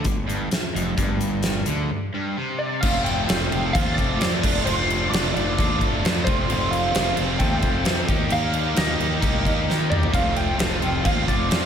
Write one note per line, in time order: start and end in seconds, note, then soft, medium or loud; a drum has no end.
0.05 0.27 G1 medium
0.05 0.23 G2 medium
0.05 kick medium
0.05 closed hi-hat medium
0.27 0.49 G1 medium
0.27 0.50 G2 medium
0.27 closed hi-hat medium
0.51 muted overdriven electric guitar stroke medium
0.51 muted fingered electric bass stroke soft
0.51 snare medium
0.51 closed hi-hat medium
0.75 0.97 F1 medium
0.75 0.97 F2 medium
0.75 closed hi-hat medium
0.97 1.63 G1 medium
0.97 1.66 G2 medium
0.97 kick loud
0.97 closed hi-hat medium
1.21 closed hi-hat medium
1.43 snare loud
1.43 closed hi-hat medium
1.66 1.89 D2 medium
1.66 1.89 D3 medium
1.66 closed hi-hat medium
1.90 2.08 G2 medium
2.14 2.36 G2 medium
2.37 2.82 C3 medium
2.59 2.82 D5 medium
2.81 3.27 F1 medium
2.81 3.28 F3 medium
2.81 3.29 A3 medium
2.81 3.04 F5 loud
2.81 kick loud
2.81 crash loud
2.81 crash medium
2.85 3.29 C4 medium
2.85 3.31 F4 medium
3.04 3.73 G5 medium
3.04 crash medium
3.28 3.51 F1 medium
3.28 3.74 F3 medium
3.28 3.53 A3 medium
3.28 3.51 C4 medium
3.28 3.50 F4 medium
3.28 snare loud
3.28 crash medium
3.51 3.74 F1 medium
3.51 3.75 A3 medium
3.51 3.75 C4 medium
3.51 3.77 F4 medium
3.51 crash medium
3.73 3.96 D#2 medium
3.73 4.19 F3 medium
3.73 4.20 A3 loud
3.73 4.21 C4 medium
3.73 3.97 F5 loud
3.73 kick loud
3.73 crash medium
3.77 4.22 F4 loud
3.94 4.65 D5 loud
3.94 kick medium
3.99 4.20 F1 medium
3.99 crash medium
4.19 4.42 F2 medium
4.19 4.45 F3 medium
4.19 4.44 A3 medium
4.19 4.42 C4 medium
4.19 4.41 F4 medium
4.19 snare loud
4.19 crash medium
4.41 4.64 F1 medium
4.41 4.66 F3 medium
4.41 4.66 A3 medium
4.41 4.67 D4 medium
4.41 4.69 F4 medium
4.41 kick loud
4.41 crash loud
4.65 5.09 F1 loud
4.65 5.11 F3 medium
4.65 5.13 A3 medium
4.65 5.13 D4 loud
4.65 5.10 C5 medium
4.65 crash medium
4.69 5.15 F4 medium
4.90 crash medium
5.10 5.33 F1 loud
5.10 5.56 F3 medium
5.10 5.36 A3 medium
5.10 5.35 D4 medium
5.10 5.31 D5 medium
5.10 crash medium
5.14 5.33 F4 medium
5.14 snare loud
5.32 5.57 F1 medium
5.32 5.59 F4 medium
5.32 6.24 D5 loud
5.36 5.58 A3 medium
5.36 5.58 D4 medium
5.36 crash medium
5.57 5.80 D#2 loud
5.57 6.02 F3 medium
5.57 6.03 A3 loud
5.57 6.04 D4 loud
5.57 6.05 F4 loud
5.57 kick loud
5.57 crash medium
5.81 6.03 F1 medium
5.81 kick medium
5.81 crash medium
6.03 6.26 F2 medium
6.03 6.24 F3 medium
6.03 6.25 A3 medium
6.03 6.26 D4 medium
6.03 6.23 F4 medium
6.03 snare loud
6.03 crash medium
6.24 6.48 F1 medium
6.24 6.46 F3 medium
6.24 6.48 A3 medium
6.24 6.50 C4 medium
6.24 6.50 F4 medium
6.24 6.72 C5 medium
6.24 kick loud
6.24 crash medium
6.47 6.94 F1 loud
6.47 6.92 F3 loud
6.47 6.93 A3 medium
6.47 6.95 C4 loud
6.47 6.96 F4 loud
6.47 crash medium
6.71 7.36 F5 loud
6.71 crash medium
6.93 7.17 F1 medium
6.93 7.38 F3 medium
6.93 7.19 A3 medium
6.93 7.18 C4 medium
6.93 7.15 F4 medium
6.93 snare loud
6.93 crash medium
7.16 7.40 F1 medium
7.16 7.39 A3 medium
7.16 7.42 C4 medium
7.16 7.41 F4 medium
7.16 crash medium
7.39 7.62 D#2 loud
7.39 7.83 F3 medium
7.39 7.84 A3 loud
7.39 7.86 C4 loud
7.39 7.86 F4 loud
7.39 8.04 G5 medium
7.39 kick loud
7.39 crash medium
7.62 7.85 F1 medium
7.62 kick medium
7.62 crash medium
7.84 8.08 F2 medium
7.84 8.06 F3 medium
7.84 8.07 A3 medium
7.84 8.10 C4 medium
7.84 8.08 F4 medium
7.84 snare loud
7.84 crash medium
8.09 8.31 D#2 medium
8.09 8.28 D#3 medium
8.09 8.30 A#3 medium
8.09 8.30 D#4 medium
8.09 8.32 G4 loud
8.09 kick loud
8.09 crash medium
8.29 8.75 D#2 loud
8.29 8.76 D#3 medium
8.29 8.76 A#3 medium
8.29 8.78 D#4 loud
8.29 8.78 G4 loud
8.29 8.79 F5 loud
8.29 crash medium
8.53 crash medium
8.76 8.99 D#2 medium
8.76 9.19 D#3 medium
8.76 8.99 A#3 medium
8.76 8.98 D#4 medium
8.76 8.96 G4 medium
8.76 9.89 D#5 medium
8.76 snare loud
8.76 crash medium
8.97 9.22 D#2 medium
8.97 9.20 A#3 medium
8.97 9.21 D#4 medium
8.97 9.22 G4 medium
8.97 crash medium
9.21 9.45 C2 medium
9.21 9.66 D#3 medium
9.21 9.67 A#3 medium
9.21 9.68 D#4 loud
9.21 9.69 G4 loud
9.21 kick loud
9.21 crash medium
9.45 9.67 D#2 medium
9.45 kick medium
9.45 crash medium
9.67 10.10 D#3 medium
9.67 9.89 D#3 medium
9.67 9.92 A#3 medium
9.67 9.91 D#4 medium
9.67 9.88 G4 medium
9.67 snare medium
9.90 10.13 D#2 medium
9.90 10.11 A#3 medium
9.90 10.13 D#4 medium
9.90 10.12 G4 medium
9.90 10.14 D5 medium
9.90 mid tom loud
10.03 floor tom medium
10.10 10.58 F1 loud
10.10 10.57 F3 medium
10.10 10.58 A3 loud
10.10 10.58 C4 medium
10.10 10.60 F4 loud
10.10 kick loud
10.10 crash medium
10.15 10.36 F5 loud
10.36 11.04 G5 loud
10.36 crash medium
10.57 10.82 F1 medium
10.57 11.02 F3 medium
10.57 10.83 A3 medium
10.57 10.81 C4 medium
10.57 10.80 F4 medium
10.57 snare loud
10.57 crash medium
10.81 11.05 F1 medium
10.81 11.04 A3 medium
10.81 11.04 C4 medium
10.81 11.05 F4 medium
10.81 crash medium
11.03 11.27 D#2 medium
11.03 11.49 F3 loud
11.03 11.50 A3 medium
11.03 11.50 C4 loud
11.03 11.52 F4 loud
11.03 11.29 F5 loud
11.03 kick loud
11.03 crash medium
11.28 11.50 F1 medium
11.28 11.66 D5 medium
11.28 kick medium
11.28 crash medium
11.49 11.66 F2 medium
11.49 11.66 F3 medium
11.49 11.66 A3 medium
11.49 11.66 C4 medium
11.49 11.66 F4 medium
11.49 snare loud
11.49 crash medium